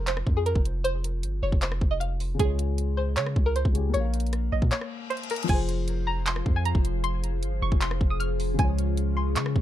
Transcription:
Already playing: F1 F3 F4 G#4 C5
0.07 C5, clap, closed hi-hat
0.17 cross-stick
0.27 F2, kick
0.37 G#4
0.46 A#4, closed hi-hat
0.56 F1, kick
0.65 closed hi-hat
0.84 C5, closed hi-hat
1.04 closed hi-hat
1.23 G1, closed hi-hat
1.43 F1 C#5
1.52 F1, kick
1.62 C5, clap, closed hi-hat
1.72 cross-stick
1.81 F1, kick
1.91 D#5
2.00 F5, closed hi-hat
2.20 open hi-hat
2.34 C#3 G#3
2.39 C#2 F4 G#4, kick, closed hi-hat
2.45 C#5
2.59 closed hi-hat
2.78 closed hi-hat
2.97 C5
3.16 C#3 C#5, clap, closed hi-hat
3.26 cross-stick
3.36 C#2, kick
3.46 A#4
3.56 C5, closed hi-hat
3.65 C#2, kick
3.72 C#3 G#3 F4, closed hi-hat
3.78 G4
3.89 A#3 A#4
3.94 A#1 C#5, closed hi-hat
4.00 F5
4.14 closed hi-hat
4.20 closed hi-hat
4.26 closed hi-hat
4.33 cross-stick, closed hi-hat
4.52 A#1 D#5
4.62 A#2, kick
4.71 C#5, clap, closed hi-hat, reverse cymbal
4.81 cross-stick
5.10 C5, closed hi-hat
5.17 closed hi-hat
5.23 closed hi-hat
5.30 A#4, closed hi-hat, open hi-hat
5.36 closed hi-hat
5.43 F3, closed hi-hat
5.47 F1 F3 F4 G#4 C5 G#5, kick, closed hi-hat, crash
5.54 C5
5.69 closed hi-hat
5.88 closed hi-hat
6.07 A#5
6.26 C6, clap, closed hi-hat
6.36 cross-stick
6.46 F2, kick
6.56 G#5
6.65 A#5, closed hi-hat
6.75 F1, kick
6.85 closed hi-hat
7.04 C6, closed hi-hat
7.24 closed hi-hat
7.43 G1, closed hi-hat
7.62 F1 C#6
7.72 F1, kick
7.81 C6, clap, closed hi-hat
7.91 cross-stick
8.01 F1, kick
8.10 D#6
8.20 F6, closed hi-hat
8.40 open hi-hat
8.54 C#3 G#3
8.59 C#2 C#3 C#4 F4 G#5, kick, closed hi-hat
8.64 C#5
8.78 closed hi-hat
8.97 closed hi-hat
9.17 C6
9.36 C#3 C#6, clap, closed hi-hat
9.46 cross-stick
9.56 C#2, kick

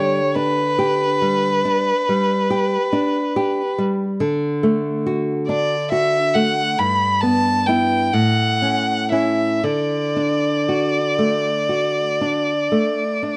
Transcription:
Already playing: D3 G3 G4 C#5
0.35 D4 B4
0.79 G4
1.22 G3
1.65 D4
2.09 G3
2.50 G4
2.93 D4
3.36 G4
3.78 G3
4.20 D3
4.63 A3
5.06 F#4
5.49 D4 D5
5.92 F#4 E5
6.35 A3 F#5
6.79 G2 B5
7.22 B3 A5
7.67 B3 E4 G5
8.13 A2 F#5
8.62 C#4
9.12 C#4 E4 E5
9.64 D3 D5
10.16 D4
10.69 F#4
11.19 A3
11.69 F#4
12.21 D4
12.72 A3
13.23 D4

